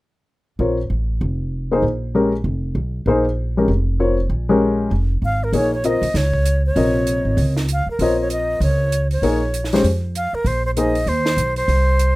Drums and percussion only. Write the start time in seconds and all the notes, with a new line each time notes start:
5.53 open hi-hat
5.84 closed hi-hat
6.03 open hi-hat
6.15 snare, open hi-hat
6.33 kick
6.46 closed hi-hat
6.76 open hi-hat
7.07 closed hi-hat
7.38 open hi-hat
7.57 snare
7.68 closed hi-hat
7.99 open hi-hat
8.30 closed hi-hat
8.61 open hi-hat
8.92 closed hi-hat
9.11 open hi-hat
9.23 open hi-hat
9.54 closed hi-hat
9.64 snare
9.73 snare, open hi-hat
9.84 open hi-hat
10.15 closed hi-hat
10.46 open hi-hat
10.77 closed hi-hat
10.95 open hi-hat
11.07 open hi-hat
11.26 snare
11.38 closed hi-hat
11.56 open hi-hat
11.69 open hi-hat
11.99 closed hi-hat